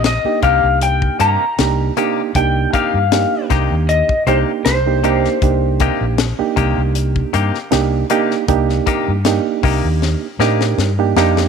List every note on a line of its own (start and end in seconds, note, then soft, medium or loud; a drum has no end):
0.00 0.16 A#1 medium
0.00 0.11 A#3 medium
0.00 0.11 C4 medium
0.00 0.11 D#4 medium
0.00 0.11 G4 medium
0.00 closed hi-hat medium
0.04 0.43 D#5 medium
0.04 snare medium
0.24 1.41 A#3 medium
0.24 1.41 D4 medium
0.24 1.42 D#4 medium
0.24 1.41 G4 medium
0.24 muted fingered electric bass stroke soft
0.42 0.59 C2 medium
0.42 0.67 C3 medium
0.42 0.67 A#3 medium
0.42 0.67 D#4 medium
0.42 0.67 G4 medium
0.42 0.82 F5 medium
0.42 kick medium
0.42 closed hi-hat medium
0.63 1.08 C2 medium
0.81 1.20 G5 medium
0.81 closed hi-hat medium
1.02 kick medium
1.20 1.36 G2 medium
1.20 1.44 C3 medium
1.20 1.44 A#3 medium
1.20 1.44 D#4 medium
1.20 1.44 G4 medium
1.20 1.93 A#5 medium
1.20 closed hi-hat medium
1.58 1.89 C2 medium
1.58 1.92 A#3 medium
1.58 1.92 D4 medium
1.58 1.92 D#4 medium
1.58 1.92 G4 medium
1.58 snare loud
1.58 closed hi-hat medium
1.97 2.21 C3 medium
1.97 2.30 A#3 medium
1.97 2.21 A#3 medium
1.97 2.30 D4 medium
1.97 2.30 D#4 medium
1.97 2.21 D#4 medium
1.97 2.31 G4 medium
1.97 2.21 G4 medium
1.97 closed hi-hat medium
2.35 2.65 C2 medium
2.35 3.02 A#3 medium
2.35 3.02 D4 medium
2.35 3.03 D#4 medium
2.35 3.03 G4 medium
2.35 2.73 G5 medium
2.35 kick medium
2.35 closed hi-hat medium
2.73 2.97 C3 medium
2.73 2.98 A#3 medium
2.73 2.98 D#4 medium
2.73 2.98 G4 medium
2.73 3.46 F5 medium
2.73 kick medium
2.73 closed hi-hat medium
2.94 3.24 G2 medium
3.12 4.12 A#3 medium
3.12 4.12 D4 medium
3.12 4.13 D#4 medium
3.12 4.13 G4 medium
3.12 snare loud
3.12 closed hi-hat medium
3.50 3.67 C2 medium
3.50 3.74 C3 medium
3.50 3.74 A#3 medium
3.50 3.75 D#4 medium
3.50 3.75 G4 medium
3.50 kick medium
3.50 snare soft
3.50 closed hi-hat medium
3.71 4.01 D#2 medium
3.89 4.24 D#5 medium
3.89 closed hi-hat medium
4.09 kick medium
4.26 4.43 C2 medium
4.26 4.51 C3 medium
4.26 4.77 A#3 medium
4.26 4.51 A#3 medium
4.26 4.78 D4 medium
4.26 4.51 D#4 medium
4.26 4.78 D#4 medium
4.26 4.52 G4 medium
4.26 4.78 G4 medium
4.26 4.37 C5 medium
4.26 closed hi-hat medium
4.65 5.26 C2 medium
4.65 6.91 C5 medium
4.65 snare loud
4.65 closed hi-hat medium
4.86 5.01 A#3 medium
4.86 5.02 D4 medium
4.86 5.02 D#4 medium
4.86 5.02 G4 medium
5.04 5.28 C3 medium
5.04 5.37 A#3 medium
5.04 5.28 A#3 medium
5.04 5.37 D4 medium
5.04 5.28 D#4 medium
5.04 5.38 D#4 medium
5.04 5.38 G4 medium
5.04 5.28 G4 medium
5.04 closed hi-hat medium
5.24 snare soft
5.42 5.89 C2 loud
5.42 6.25 A#3 medium
5.42 6.25 D4 medium
5.42 6.25 D#4 medium
5.42 6.26 G4 medium
5.42 kick loud
5.42 closed hi-hat medium
5.79 6.04 C3 medium
5.79 6.05 A#3 medium
5.79 6.05 D#4 medium
5.79 6.05 G4 medium
5.79 kick medium
5.79 closed hi-hat medium
6.01 6.31 A#1 medium
6.18 snare loud
6.18 closed hi-hat medium
6.39 7.55 A#3 medium
6.39 7.55 D4 medium
6.39 7.55 D#4 medium
6.39 7.55 G4 medium
6.39 muted fingered electric bass stroke soft
6.56 6.73 C2 medium
6.56 6.81 C3 medium
6.56 6.81 A#3 medium
6.56 6.81 D#4 medium
6.56 6.81 G4 medium
6.56 kick medium
6.56 closed hi-hat medium
6.78 7.22 C2 medium
6.95 closed hi-hat medium
7.16 kick medium
7.33 7.50 G2 medium
7.33 7.57 C3 medium
7.33 7.58 A#3 medium
7.33 7.58 D#4 medium
7.33 7.58 G4 medium
7.33 closed hi-hat medium
7.54 snare soft
7.71 8.02 C2 medium
7.71 8.05 A#3 medium
7.71 8.05 D4 medium
7.71 8.05 D#4 medium
7.71 8.05 G4 medium
7.71 snare loud
7.71 closed hi-hat medium
8.10 8.34 C3 medium
8.10 8.34 A#3 medium
8.10 8.44 A#3 medium
8.10 8.44 D4 medium
8.10 8.34 D#4 medium
8.10 8.44 D#4 medium
8.10 8.44 G4 medium
8.10 8.35 G4 medium
8.10 closed hi-hat medium
8.31 snare soft
8.48 8.79 C2 medium
8.48 9.15 A#3 medium
8.48 9.15 D4 medium
8.48 9.16 D#4 medium
8.48 9.16 G4 loud
8.48 kick loud
8.48 closed hi-hat medium
8.69 snare soft
8.86 9.11 C3 medium
8.86 9.11 A#3 medium
8.86 9.11 D#4 medium
8.86 9.11 G4 medium
8.86 kick medium
8.86 closed hi-hat medium
9.08 9.38 G2 medium
9.25 10.25 A#3 medium
9.25 10.26 D4 medium
9.25 10.26 D#4 medium
9.25 10.26 G4 medium
9.25 snare medium
9.25 closed hi-hat medium
9.63 9.80 C2 medium
9.63 9.87 C3 medium
9.63 9.88 A#3 medium
9.63 9.88 D#4 medium
9.63 9.88 G4 medium
9.63 kick medium
9.63 open hi-hat medium
9.84 10.14 D#2 medium
10.02 snare medium
10.39 10.74 A2 medium
10.39 10.64 C3 medium
10.39 10.64 A#3 medium
10.39 10.90 D4 medium
10.39 10.91 D#4 medium
10.39 10.64 D#4 medium
10.39 10.91 G4 medium
10.39 10.65 G4 medium
10.39 10.90 A#4 medium
10.39 snare medium
10.61 snare medium
10.78 11.12 G2 medium
10.78 snare medium
10.99 11.14 A#3 medium
10.99 11.14 D4 medium
10.99 11.14 D#4 medium
10.99 11.15 G4 medium
11.16 11.48 F2 medium
11.16 11.41 C3 medium
11.16 11.48 A#3 medium
11.16 11.41 A#3 medium
11.16 11.48 D4 medium
11.16 11.48 D#4 medium
11.16 11.41 D#4 medium
11.16 11.48 G4 medium
11.16 11.41 G4 medium
11.16 snare medium
11.37 snare medium